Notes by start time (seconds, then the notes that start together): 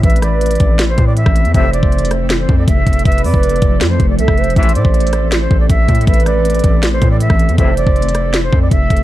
Already playing: E3 A3 C4 A4
0.04 A1 B4 E5, kick, closed hi-hat
0.10 closed hi-hat
0.16 closed hi-hat
0.22 D5, cross-stick, closed hi-hat
0.41 closed hi-hat
0.46 closed hi-hat
0.51 closed hi-hat
0.55 closed hi-hat
0.60 A1, kick, closed hi-hat
0.79 snare, closed hi-hat
0.89 C5
0.98 A2, kick, closed hi-hat
1.07 D5
1.17 E5, closed hi-hat
1.26 A1, kick, cross-stick
1.36 closed hi-hat
1.45 E2, closed hi-hat
1.54 F1 F2 A2 C3 F3 A3 C5 E5, kick, closed hi-hat
1.73 D5, closed hi-hat
1.83 F1, kick
1.92 closed hi-hat
1.99 closed hi-hat
2.05 closed hi-hat
2.11 cross-stick, closed hi-hat
2.30 snare, closed hi-hat
2.40 C5
2.49 F2, kick
2.58 D5
2.68 F1 E5, kick, closed hi-hat
2.87 F1, kick, closed hi-hat
2.93 closed hi-hat
2.99 closed hi-hat
3.05 F1 B4 E5, kick, closed hi-hat
3.12 closed hi-hat
3.18 closed hi-hat
3.24 F2 D5, open hi-hat
3.34 F1, kick
3.43 closed hi-hat
3.49 closed hi-hat
3.56 closed hi-hat
3.62 F1, kick, closed hi-hat
3.81 F2, snare, closed hi-hat
3.90 C5
4.00 F1, kick, closed hi-hat
4.10 D5
4.19 C2 A4 E5, closed hi-hat
4.28 F1, kick, cross-stick
4.37 C5, closed hi-hat
4.44 closed hi-hat
4.50 closed hi-hat
4.56 A1 A2 C3 E3 C4 C5 E5, kick, closed hi-hat
4.63 closed hi-hat
4.69 closed hi-hat
4.75 A2 D5, closed hi-hat
4.85 A1, kick
4.94 closed hi-hat
5.00 closed hi-hat
5.07 closed hi-hat
5.13 cross-stick, closed hi-hat
5.32 snare, closed hi-hat
5.41 C5
5.51 A1, kick
5.60 D5
5.70 A1 E5, kick, closed hi-hat
5.88 A2, kick, closed hi-hat
5.95 closed hi-hat
6.01 closed hi-hat
6.07 A1 B4 E5, kick, closed hi-hat
6.14 closed hi-hat
6.20 closed hi-hat
6.26 D5, cross-stick, closed hi-hat
6.45 closed hi-hat
6.50 closed hi-hat
6.54 closed hi-hat
6.59 closed hi-hat
6.64 A1, kick, closed hi-hat
6.83 snare, closed hi-hat
6.93 C5
7.02 A2, kick, closed hi-hat
7.11 D5
7.20 E5, closed hi-hat
7.30 A1, kick, cross-stick
7.39 closed hi-hat
7.49 E2, closed hi-hat
7.58 F1 F2 A2 C3 F3 C4 A4 C5 E5, kick, closed hi-hat
7.77 D5, closed hi-hat
7.87 F1, kick
7.96 closed hi-hat
8.02 closed hi-hat
8.09 closed hi-hat
8.15 cross-stick, closed hi-hat
8.34 snare, closed hi-hat
8.43 C5
8.53 F2, kick
8.62 D5
8.71 F1 E5, kick, closed hi-hat
8.90 F1, kick, closed hi-hat
8.97 closed hi-hat